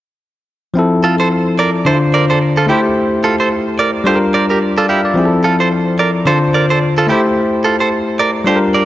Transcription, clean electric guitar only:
1.04 F4 A4
1.20 A4 C5
1.59 A#4 D5
1.86 A4 C5
2.14 A#4 D5
2.30 A4 C5
2.57 F4 A4
2.69 E4 G4
3.24 F4 A4
3.40 A4 C5
3.79 A#4 D5
4.07 G4 C5
4.34 A#4 D5
4.50 G4 A#4
4.78 F4 A4
4.89 E4 G4
5.44 F4 A4
5.60 A4 C5
5.99 A#4 D5
6.27 A4 C5
6.54 A#4 D5
6.70 A4 C5
6.98 F4 A4
7.09 E4 G4
7.64 F4 A4
7.80 A4 C5
8.19 A#4 D5
8.47 G4 C5
8.74 A#4 D5

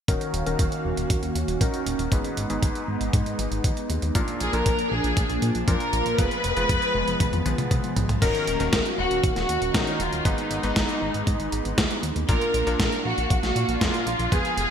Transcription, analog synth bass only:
0.08 D#1
0.34 D#1
0.46 D#1
0.59 D#1
0.84 D#1
0.97 D#1
1.10 D#1
1.23 D#1
1.35 D#2
1.48 D#1
1.61 A#1
1.86 D#1
1.99 D#1
2.12 G#1
2.37 G#1
2.50 G#1
2.62 G#1
2.88 G#1
3.01 G#1
3.13 G#2
3.26 G#1
3.39 G#1
3.51 G#1
3.64 D#2
3.90 D#2
4.02 D#2
4.15 A#1
4.41 A#1
4.53 A#1
4.66 A#1
4.91 A#1
5.04 A#1
5.17 A#1
5.30 A#1
5.42 A#2
5.55 A#1
5.68 F2
5.93 A#1
6.06 A#1
6.18 F1
6.44 F1
6.57 F1
6.69 F1
6.95 F1
7.08 F1
7.20 B1
7.33 F2
7.46 B1
7.58 B1
7.71 B1
7.96 B1
8.09 B1
8.22 D#1
8.47 D#1
8.60 D#1
8.73 D#1
8.98 D#1
9.11 D#1
9.23 D#1
9.36 D#1
9.49 D#2
9.62 D#1
9.74 A#1
10.00 D#1
10.12 D#1
10.25 G#1
10.51 G#1
10.63 G#1
10.76 G#1
11.02 G#1
11.14 G#1
11.27 G#2
11.40 G#1
11.52 G#1
11.65 G#1
11.78 D#2
12.03 D#2
12.16 D#2
12.29 A#1
12.54 A#1
12.67 A#1
12.79 A#1
13.05 A#1
13.18 A#1
13.30 A#1
13.43 A#1
13.56 A#2
13.68 A#1
13.81 F2
14.07 A#1
14.19 A#1
14.32 F1
14.57 F1

